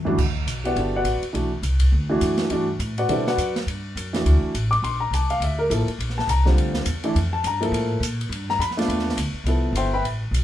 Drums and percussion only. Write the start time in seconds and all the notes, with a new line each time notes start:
0.07 floor tom
0.18 kick, crash
0.48 hi-hat pedal, ride
0.65 ride
0.76 ride
1.05 hi-hat pedal, ride
1.23 ride
1.35 ride
1.63 hi-hat pedal, ride
1.80 kick, ride
2.21 hi-hat pedal, ride
2.37 snare, ride
2.50 ride
2.80 hi-hat pedal, ride
2.98 ride
3.09 ride
3.27 snare
3.38 hi-hat pedal, ride
3.56 snare, ride
3.68 ride
3.97 hi-hat pedal, ride
4.14 snare, ride
4.26 ride
4.55 hi-hat pedal, ride
4.73 ride
4.84 ride
5.13 hi-hat pedal, ride
5.30 ride
5.42 ride
5.71 hi-hat pedal, ride
5.88 ride
6.00 ride
6.10 snare
6.19 snare
6.29 hi-hat pedal, ride
6.46 snare
6.58 ride
6.74 snare
6.86 hi-hat pedal, ride
7.04 ride
7.16 ride
7.44 hi-hat pedal, ride
7.63 ride
7.74 ride
8.03 hi-hat pedal, ride
8.21 ride
8.32 ride
8.50 snare
8.61 hi-hat pedal, ride
8.71 snare
8.79 snare, ride
8.90 ride
8.99 snare
9.09 snare
9.18 hi-hat pedal, ride
9.46 ride
9.75 hi-hat pedal, ride
10.05 ride
10.34 hi-hat pedal, ride